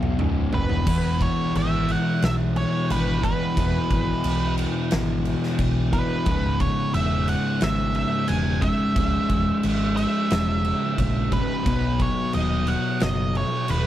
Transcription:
Already playing: B1 B2 F#3 B3
0.03 mid tom
0.18 C#1 C#2 G#2 C#3, mid tom
0.52 F#1 F#2 C#3 B4, floor tom
0.69 E1 E2 B2, floor tom
0.86 E1 E2 B2 E3, kick, crash
1.21 C#5, kick, crash
1.55 G#1 E5, crash
1.89 F#5, crash
2.22 B1 E5, snare, crash
2.56 C#5, crash
2.90 G#1 B4, crash
3.22 E2 B2 E3 B4, kick, crash
3.56 E1 E2 B2 E3, kick, crash
3.90 G#1, kick, crash
4.24 B1, crash
4.58 crash
4.91 G#1, snare, crash
5.25 crash
5.43 snare
5.59 B1, kick, crash
5.92 E2 B2 E3 B4, kick, crash
6.26 C#1 C#2 G#2 C#3, kick, crash
6.60 C#5, kick, crash
6.94 E1 E5, crash
7.28 F#5, crash
7.61 G#1 E5, snare, crash
7.95 E5, crash
8.28 E1 G#5, crash
8.61 C#2 G#2 C#3 E5, kick, crash
8.96 C#1 C#2 G#2 C#3, kick, crash
9.29 E1, kick, crash
9.63 G#1, crash
9.97 E5, crash
10.30 E1, snare, crash
10.65 crash
10.98 A#1, kick, crash
11.31 C#2 G#2 C#3 B4, kick, crash
11.65 B1 B2 F#3 B3, kick, crash
12.00 C#5, kick, crash
12.33 D#1 D#5, crash
12.67 F#5, crash
13.00 F#1 D#5, snare, crash
13.35 C#5, crash
13.68 D#1 B4, crash

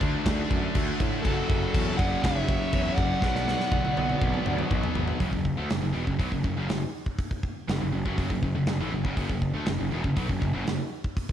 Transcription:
Already playing: D3 A3 D4
0.00 D2 A3 D4, kick, crash
0.05 D3
0.24 D2 D3 A3 D4, kick, snare, crash
0.51 F#2, kick, crash
0.75 D2, kick, crash
1.00 A2, kick, crash
1.22 F#1 F#2 C#3 A4, kick, crash
1.27 F#3 F#4
1.49 F#1, kick, crash
1.74 E2, kick, crash
1.97 F#1 C#3 F#3 D5 F#5, kick, crash
2.01 F#2
2.22 F#1 F#2 C#3 F#3 C#5 E5, kick, snare, crash
2.49 kick, crash
2.73 E2, kick, crash
2.95 F#1 D5 F#5, kick, crash
3.20 B1 B2 F#3 B3, kick, snare
3.25 B3
3.35 snare
3.48 snare
3.60 snare
3.71 B1, kick, high tom
3.85 high tom
3.95 B1 F#3 B3, high tom
4.00 B2
4.09 mid tom
4.21 B1 B2 F#3 B3, kick, mid tom
4.34 mid tom
4.46 D2, mid tom
4.59 mid tom
4.71 B1, kick, mid tom
4.83 floor tom
4.95 G#1, floor tom
5.08 floor tom
5.20 F#1 F#2 C#3, kick, open hi-hat
5.32 F#1 F#2 C#3, kick
5.45 kick
5.57 D2 D3 A3
5.70 F#1 F#2 C#3, snare, open hi-hat
5.83 F#1 F#2 C#3
5.94 E1 E2 B2
6.07 F#1 F#2 C#3, kick
6.19 B1 B2 F#3, kick, open hi-hat
6.32 F#1 F#2 C#3, kick
6.44 F#1 F#2 C#3, kick
6.57 F#1 F#2 C#3
6.69 F#1 F#2 C#3, snare, open hi-hat
7.06 kick
7.18 kick, open hi-hat
7.31 kick
7.43 kick
7.69 F#1 F#2 C#3, snare, open hi-hat
7.81 F#1 F#2 C#3
7.93 F#1 F#2 C#3
8.05 F#1 F#2 C#3 F#3, kick
8.18 kick, open hi-hat
8.30 F#1 F#2 C#3, kick
8.43 F#1 F#2 C#3, kick
8.55 F#1 F#2 C#3
8.66 F#1 F#2 C#3, snare, open hi-hat
8.80 A1 A2 E3
8.92 F#1 F#2 C#3
9.05 F#1 F#2 C#3, kick
9.17 F#1 F#2 C#3, kick, open hi-hat
9.29 F#1 F#2 C#3, kick
9.42 kick
9.54 D2 D3 A3
9.66 F#1 F#2 C#3, snare, open hi-hat
9.80 F#1 F#2 C#3
9.92 E1 E2 B2
10.04 F#1 F#2 C#3, kick
10.16 B1 B2 F#3, kick, open hi-hat
10.29 F#1 F#2 C#3, kick
10.41 F#1 F#2 C#3, kick
10.53 F#1 F#2 C#3
10.66 F#1 F#2 C#3, snare, open hi-hat
11.04 kick
11.17 kick, open hi-hat
11.29 kick

